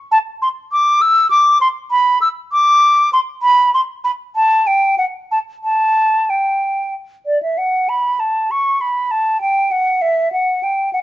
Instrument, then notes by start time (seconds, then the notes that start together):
flute
0.12 A5
0.42 C6
0.72 D6
1.02 E6
1.31 D6
1.61 C6
1.91 B5
2.21 E6
2.52 D6
3.13 C6
3.42 B5
3.74 C6
4.04 B5
4.36 A5
4.67 G5
4.98 F#5
5.31 A5
5.64 A5
6.30 G5
7.26 D5
7.43 E5
7.58 F#5
7.89 B5
8.20 A5
8.51 C#6
8.81 B5
9.11 A5
9.41 G5
9.71 F#5
10.02 E5
10.32 F#5
10.63 G5
10.93 F#5